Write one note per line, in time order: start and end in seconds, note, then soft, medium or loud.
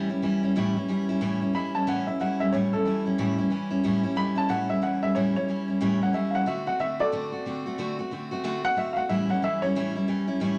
0.00 0.10 A2 medium
0.00 0.10 E3 medium
0.09 0.22 G3 soft
0.09 0.22 C#4 medium
0.09 0.23 E4 medium
0.22 0.43 E3 medium
0.22 0.43 G3 medium
0.22 0.42 C#4 medium
0.22 0.42 E4 medium
0.43 0.55 G3 medium
0.43 0.56 C#4 medium
0.43 0.56 E4 medium
0.56 0.76 A2 medium
0.56 0.76 E3 medium
0.56 0.77 G3 loud
0.56 0.76 C#4 medium
0.56 0.75 E4 loud
0.76 0.88 G3 soft
0.76 0.89 C#4 soft
0.76 0.89 E4 soft
0.89 1.09 E3 medium
0.89 1.09 G3 medium
0.89 1.09 C#4 medium
0.89 1.08 E4 medium
1.09 1.20 G3 medium
1.09 1.21 C#4 medium
1.09 1.21 E4 medium
1.21 1.42 A2 medium
1.21 1.42 E3 medium
1.21 1.42 G3 medium
1.21 1.41 C#4 medium
1.21 1.40 E4 medium
1.41 1.53 G3 soft
1.41 1.54 C#4 medium
1.41 1.54 E4 soft
1.53 1.74 E3 medium
1.53 1.75 G3 medium
1.53 1.74 C#4 medium
1.53 1.73 E4 medium
1.53 1.74 B5 medium
1.74 1.86 G3 soft
1.74 1.86 C#4 soft
1.74 1.87 E4 medium
1.74 1.87 A5 medium
1.87 2.07 A2 medium
1.87 2.07 E3 medium
1.87 2.08 G3 medium
1.87 2.07 C#4 medium
1.87 2.06 E4 medium
1.87 2.08 F#5 medium
2.07 2.19 G3 soft
2.07 2.20 C#4 medium
2.07 2.21 E4 soft
2.07 2.20 E5 medium
2.20 2.40 E3 medium
2.20 2.40 G3 medium
2.20 2.40 C#4 medium
2.20 2.39 E4 medium
2.20 2.40 F#5 medium
2.40 2.52 G3 soft
2.40 2.53 C#4 medium
2.40 2.53 E4 medium
2.40 2.53 E5 loud
2.53 2.73 A2 medium
2.53 2.73 E3 medium
2.53 2.73 G3 medium
2.53 2.73 C#4 medium
2.53 2.72 E4 medium
2.53 2.72 C#5 medium
2.73 2.85 G3 soft
2.73 2.86 C#4 soft
2.73 2.86 E4 medium
2.73 3.05 A4 medium
2.85 3.06 E3 medium
2.85 3.06 G3 medium
2.85 3.05 C#4 medium
2.85 3.04 E4 medium
3.05 3.18 G3 medium
3.05 3.18 C#4 soft
3.05 3.18 E4 medium
3.18 3.39 A2 medium
3.18 3.39 E3 medium
3.18 3.39 G3 loud
3.18 3.38 C#4 loud
3.18 3.37 E4 loud
3.38 3.50 G3 soft
3.38 3.51 C#4 soft
3.38 3.51 E4 medium
3.50 3.71 E3 medium
3.50 3.71 G3 medium
3.50 3.70 C#4 medium
3.50 3.69 E4 medium
3.70 3.83 G3 medium
3.70 3.83 C#4 medium
3.70 3.84 E4 medium
3.84 4.04 A2 medium
3.84 4.04 E3 medium
3.84 4.04 G3 medium
3.84 4.03 C#4 medium
3.84 4.02 E4 loud
4.03 4.15 G3 soft
4.03 4.16 C#4 medium
4.03 4.16 E4 medium
4.16 4.37 E3 medium
4.16 4.36 G3 medium
4.16 4.35 C#4 medium
4.16 4.34 E4 medium
4.16 4.37 B5 loud
4.35 4.48 G3 soft
4.35 4.49 C#4 soft
4.35 4.49 E4 medium
4.35 4.50 A5 medium
4.49 4.70 A2 medium
4.49 4.70 E3 medium
4.49 4.70 G3 medium
4.49 4.68 C#4 medium
4.49 4.68 E4 medium
4.49 4.69 F#5 medium
4.69 4.81 G3 soft
4.69 4.82 C#4 medium
4.69 4.82 E4 medium
4.69 4.83 E5 loud
4.82 5.02 E3 medium
4.82 5.03 G3 medium
4.82 5.02 C#4 medium
4.82 5.01 E4 medium
4.82 5.02 F#5 medium
5.02 5.14 G3 soft
5.02 5.15 C#4 medium
5.02 5.15 E4 medium
5.02 5.16 E5 loud
5.15 5.36 A2 medium
5.15 5.36 E3 medium
5.15 5.36 G3 medium
5.15 5.35 C#4 medium
5.15 5.34 E4 medium
5.15 5.35 C#5 medium
5.35 5.48 G3 soft
5.35 5.48 C#4 soft
5.35 5.48 E4 soft
5.35 5.68 C#5 loud
5.48 5.69 E3 medium
5.48 5.69 G3 medium
5.48 5.68 C#4 medium
5.48 5.67 E4 medium
5.68 5.80 G3 soft
5.68 5.80 C#4 soft
5.68 5.81 E4 medium
5.81 6.01 A2 loud
5.81 6.01 E3 medium
5.81 6.01 G3 medium
5.81 6.00 C#4 loud
5.81 5.99 E4 loud
6.01 6.13 G3 soft
6.01 6.13 C#4 soft
6.01 6.14 E4 soft
6.01 6.15 F#5 medium
6.13 6.34 E3 medium
6.13 6.34 G3 medium
6.13 6.34 C#4 medium
6.13 6.33 E4 medium
6.13 6.34 E5 medium
6.30 6.47 E4 medium
6.30 6.32 F5 medium
6.35 6.46 G3 soft
6.35 6.46 C#4 soft
6.35 6.47 F#5 medium
6.46 6.67 D3 medium
6.46 6.67 A3 medium
6.46 6.66 C4 medium
6.46 6.65 F#4 medium
6.46 6.67 E5 medium
6.67 6.79 A3 soft
6.67 6.80 C4 soft
6.67 6.80 F#4 medium
6.67 6.80 F#5 medium
6.79 7.00 D3 medium
6.79 7.00 A3 medium
6.79 7.00 C4 medium
6.79 6.98 F#4 medium
6.79 7.00 E5 loud
6.99 7.11 A3 soft
6.99 7.12 C4 soft
6.99 7.12 F#4 medium
6.99 7.95 A4 medium
6.99 7.96 D5 loud
7.12 7.33 D3 medium
7.12 7.33 A3 medium
7.12 7.32 C4 medium
7.12 7.31 F#4 loud
7.32 7.45 A3 soft
7.32 7.45 C4 soft
7.32 7.46 F#4 soft
7.45 7.66 D3 medium
7.45 7.66 A3 medium
7.45 7.65 C4 medium
7.45 7.65 F#4 medium
7.66 7.78 A3 medium
7.66 7.78 C4 medium
7.66 7.78 F#4 medium
7.78 7.99 D3 medium
7.78 7.99 A3 loud
7.78 7.98 C4 medium
7.78 7.98 F#4 medium
7.99 8.11 A3 soft
7.99 8.11 C4 medium
7.99 8.12 F#4 medium
8.11 8.32 D3 medium
8.11 8.32 A3 medium
8.11 8.31 C4 medium
8.11 8.30 F#4 medium
8.31 8.43 A3 medium
8.31 8.43 C4 medium
8.31 8.44 F#4 medium
8.44 8.64 D3 medium
8.44 8.64 A3 medium
8.44 8.63 C4 loud
8.44 8.62 F#4 loud
8.63 8.75 A3 soft
8.63 8.76 C4 soft
8.63 8.76 F#4 medium
8.63 8.77 F#5 loud
8.76 8.97 D3 medium
8.76 8.97 A3 medium
8.76 8.96 C4 medium
8.76 8.95 F#4 medium
8.76 8.97 E5 medium
8.93 9.10 F#4 medium
8.93 8.95 F5 medium
8.93 9.10 F#5 medium
8.97 9.09 A3 soft
8.97 9.10 C4 soft
9.09 9.30 A2 medium
9.09 9.30 E3 medium
9.09 9.30 G3 medium
9.09 9.29 C#4 medium
9.09 9.28 E4 medium
9.09 9.29 E5 medium
9.29 9.42 G3 soft
9.29 9.42 C#4 soft
9.29 9.42 E4 medium
9.29 9.43 F#5 medium
9.42 9.62 E3 medium
9.42 9.63 G3 medium
9.42 9.62 C#4 medium
9.42 9.61 E4 medium
9.42 9.63 E5 loud
9.62 9.75 G3 medium
9.62 9.75 C#4 medium
9.62 9.75 E4 medium
9.62 10.58 C#5 loud
9.75 9.96 A2 medium
9.75 9.96 E3 medium
9.75 9.96 G3 loud
9.75 9.95 C#4 medium
9.75 9.94 E4 loud
9.96 10.07 G3 soft
9.96 10.08 C#4 soft
9.96 10.08 E4 medium
10.08 10.28 E3 medium
10.08 10.28 G3 medium
10.08 10.27 C#4 medium
10.08 10.26 E4 medium
10.28 10.40 G3 soft
10.28 10.40 C#4 medium
10.28 10.41 E4 medium
10.40 10.59 A2 medium
10.40 10.59 E3 medium
10.40 10.59 G3 medium
10.40 10.59 C#4 loud
10.40 10.58 E4 medium